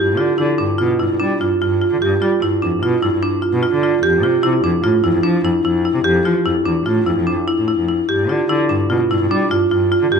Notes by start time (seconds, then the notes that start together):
Already playing: G2
0.17 D3 F4
0.38 D3 E4
0.58 G2 D4
0.78 B2 F4
1.00 G2 E4
1.11 G2
1.20 G3 D4
1.41 G2 F4
1.62 G2 F4
1.82 F4
1.92 D3
2.02 G2 G4
2.22 G3 F4
2.42 G2 E4
2.62 F2 D4
2.83 B2 F4
3.03 G2 E4
3.13 G2
3.23 D4
3.42 F4
3.53 B2
3.63 F4
3.73 D3
3.83 F4
4.03 F2 G4
4.23 C3 F4
4.43 C3 E4
4.64 F2 D4
4.84 A2 F4
5.04 F2 E4
5.14 F2
5.23 F3 D4
5.44 F2 E4
5.65 F2 E4
5.85 E4
5.95 C3
6.04 F2 G4
6.25 F3 F4
6.46 F2 E4
6.66 E2 D4
6.86 A2 F4
7.06 F2 E4
7.17 F2
7.27 D4
7.48 E4
7.58 A2
7.68 E4
7.79 F2
7.89 E4
8.09 G2 G4
8.29 D3 F4
8.49 D3 E4
8.69 G2 D4
8.90 B2 F4
9.11 G2 E4
9.21 G2
9.31 G3 D4
9.51 G2 F4
9.71 G2 F4
9.92 F4
10.02 D3
10.12 G2 G4